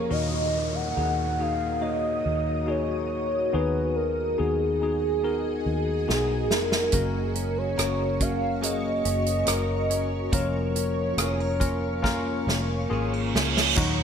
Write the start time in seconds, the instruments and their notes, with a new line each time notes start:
Already playing: clean electric guitar F3 A#3 C#4 A#4, tine electric piano F3 A#3 C#4 F4 G4 G#4 C#5, soft synth lead A#4
0.09 fingered electric bass D#2, tine electric piano A#2 A#3 D#4 F#4 A#4, ambient pad F#4 A#4 D#5 D#6, soft synth lead D#5, downlifter
0.75 soft synth lead F#5
0.97 fingered electric bass D#2, tine electric piano A#3 D#4 F#4 G#4
1.39 tine electric piano A#3 D#4 F#4 G#4, soft synth lead F5
1.81 tine electric piano A#3 D#4 F#4 C#5, soft synth lead D#5
2.26 fingered electric bass D#2
2.66 tine electric piano A#3 D#4 F#4 G#4, soft synth lead C#5
3.52 fingered electric bass D#2, tine electric piano D#3 B3 D#4 F#4 G#4, ambient pad F#4 G#4 D#5 G#5, soft synth lead B4
3.95 soft synth lead A#4
4.38 fingered electric bass D#2, tine electric piano B3 D#4 F#4 G#4, soft synth lead G#4
4.82 tine electric piano B3 D#4 F#4 G#4
5.23 tine electric piano B3 D#4 F#4 A#4
5.66 fingered electric bass D#2
6.08 fingered electric bass B1, tine electric piano B3 D#4 F#4 G#4, soft synth lead G#4, snare
6.51 fingered electric bass F1, soft synth lead A#4, snare
6.72 snare
6.92 fingered electric bass F#1, clean electric guitar F#2, tine electric piano C#3 A#3 C#4 F#4 A#4, ambient pad A#4 C#5 C#6, kick, closed hi-hat
7.35 clean electric guitar C#4, closed hi-hat
7.58 soft synth lead C#5
7.78 fingered electric bass F#1, tine electric piano A#3 C#4 F#4 C#5, clean electric guitar A#4, cross-stick, closed hi-hat
8.20 tine electric piano A#3 C#4 F#4 A#4, clean electric guitar C#4, soft synth lead F5, kick, closed hi-hat
8.61 tine electric piano A#3 C#4 F#4 G#4, clean electric guitar A#3, soft synth lead D#5, closed hi-hat
9.05 fingered electric bass F#1, clean electric guitar C#4, closed hi-hat
9.26 closed hi-hat
9.46 fingered electric bass F#1, tine electric piano A#3 C#4 F#4 A#4, clean electric guitar A#4, cross-stick, closed hi-hat
9.90 clean electric guitar C#4, closed hi-hat
10.32 fingered electric bass F1, tine electric piano F3 A#3 C#4 F4 A#4, clean electric guitar F3, soft synth lead C#5, ambient pad F5 C#6, kick, closed hi-hat
10.76 clean electric guitar C#4, closed hi-hat
11.17 fingered electric bass F1, tine electric piano A#3 C#4 F4 A#4, clean electric guitar G#4, cross-stick, closed hi-hat
11.40 clean electric guitar A#4
11.60 tine electric piano A#3 C#4 F4 A#4, clean electric guitar C#4, kick, closed hi-hat
12.02 tine electric piano A#3 C#4 F4 A#4, clean electric guitar A#3, kick, snare, reverse cymbal
12.47 fingered electric bass F1, clean electric guitar C#4, snare
12.90 fingered electric bass G#1, tine electric piano A#3 C#4 F4 G#4, clean electric guitar G#4
13.14 clean electric guitar A#4
13.34 fingered electric bass C#2, clean electric guitar C#4, snare
13.57 snare
13.76 fingered electric bass D#2, tine electric piano A#2 F#3 D#4 F#4, clean electric guitar D#3, violin section F#4 F#5, kick, crash